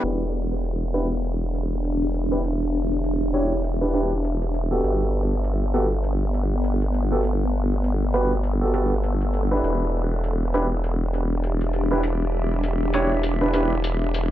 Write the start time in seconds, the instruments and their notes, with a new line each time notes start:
Already playing: ambient pad B3 A4 F#5, grand piano D4 E4 G4 B4
0.03 wobble bass E1, ambient pad D4, closed hi-hat, crash
0.53 ambient pad E5
0.64 ambient pad G4, closed hi-hat
0.94 grand piano D4 E4 G4 B4, closed hi-hat
1.24 closed hi-hat
1.55 closed hi-hat
1.84 closed hi-hat
2.02 closed hi-hat
2.10 closed hi-hat
2.14 closed hi-hat
2.20 closed hi-hat
2.32 grand piano D4 E4 G4 B4
2.44 closed hi-hat
3.04 closed hi-hat
3.34 grand piano D4 E4 G4 C#5, closed hi-hat
3.64 closed hi-hat
3.81 grand piano D4 E4 G4 B4
3.94 grand piano D4 E4 G4 B4, closed hi-hat
4.24 closed hi-hat
4.42 closed hi-hat
4.54 closed hi-hat
4.71 grand piano B3 F#4 G4 A4
4.84 wobble bass G1, ambient pad B3, closed hi-hat
5.09 ambient pad F#5
5.36 ambient pad A4
5.44 closed hi-hat
5.74 grand piano B3 F#4 G4 A4, closed hi-hat
6.04 closed hi-hat
6.34 closed hi-hat
6.64 closed hi-hat
6.82 closed hi-hat
6.94 closed hi-hat
7.12 grand piano B3 F#4 G4 A4
7.24 closed hi-hat
7.84 closed hi-hat
8.14 grand piano B3 F#4 G4 B4, closed hi-hat
8.43 closed hi-hat
8.61 grand piano B3 F#4 G4 A4
8.74 grand piano B3 F#4 G4 A4, closed hi-hat
9.04 closed hi-hat
9.21 closed hi-hat
9.34 closed hi-hat
9.51 grand piano D4 E4 G4 B4
9.64 wobble bass E1, ambient pad D4, closed hi-hat
10.24 closed hi-hat
10.35 ambient pad G4
10.54 grand piano D4 E4 G4 B4, ambient pad E5, closed hi-hat
10.84 closed hi-hat
11.14 closed hi-hat
11.44 closed hi-hat
11.61 closed hi-hat
11.73 closed hi-hat
11.91 grand piano D4 E4 G4 B4
12.03 closed hi-hat
12.63 closed hi-hat
12.94 grand piano D4 E4 G4 C#5, closed hi-hat
13.23 closed hi-hat
13.41 grand piano D4 E4 G4 B4
13.54 grand piano D4 E4 G4 B4, closed hi-hat
13.84 closed hi-hat
14.14 closed hi-hat